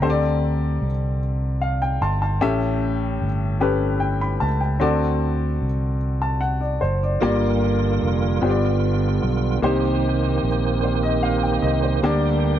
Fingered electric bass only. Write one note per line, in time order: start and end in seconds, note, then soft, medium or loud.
0.01 0.77 D2 medium
0.82 1.98 C2 medium
2.01 2.38 G1 medium
2.41 3.17 A1 medium
3.22 4.38 G1 medium
4.42 4.79 C#2 medium
4.82 5.58 D2 medium
5.62 6.78 C2 medium
6.82 7.19 F#1 medium
7.22 7.98 G1 medium
8.03 8.39 F1 medium
8.42 9.18 G1 medium
9.23 9.59 B1 medium
9.63 10.38 C2 medium
10.43 11.59 A#1 medium
11.63 11.99 C2 medium
12.03 12.59 D2 loud